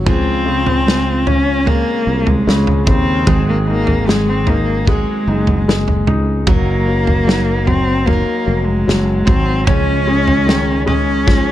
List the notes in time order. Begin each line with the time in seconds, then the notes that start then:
0.06 C#2 C#3 F3 G#3 C4 F4 G#4, kick, floor tom
0.46 C#3
0.66 floor tom
0.86 G#3 F4 G#4, snare
1.27 C#4, floor tom
1.65 G#3 A#3 C4, floor tom
1.70 F4 G#4
2.07 C2
2.26 G#3, floor tom
2.47 C#2 C#3, snare
2.67 floor tom
2.87 D#2 C#3 C4, kick, floor tom
3.26 G#1 G#2 D#3 F#3 G#3 C4 F#4 G#4, kick, floor tom
3.49 A#3
3.67 A#3 D#4
3.87 floor tom
4.06 F#3 G#3 C4 F#4 G#4, snare
4.29 C4
4.47 A#3 D#4, floor tom
4.85 F#3 G#3 C4, kick, floor tom
4.90 G#3 F#4 G#4
5.28 F#1 D#4
5.47 floor tom
5.68 G#3, snare
5.88 floor tom
6.07 C#2 D#4, floor tom
6.47 F#1 F#3 A#3 C#4 D#4 A#4, kick, floor tom
6.88 F#3
7.07 floor tom
7.27 F#3 D#4 A#4, snare
7.67 F#3 C4, floor tom
8.06 F#3 A#3, floor tom
8.10 D#4 A#4
8.46 F1 F#3
8.65 G#3
8.87 F#1 F#3, snare
9.26 G#1 F#3 C4, kick, floor tom
9.65 C#2 C#3 F3 G#3 C#4, kick, floor tom
9.69 D#4 G#4
10.07 G#3
10.28 floor tom
10.46 D#3 G#3 C#4 D#4, snare
10.51 G#4
10.86 G#3 C#4, floor tom
11.26 F3 G#3 C#4, kick, snare
11.31 D#4 G#4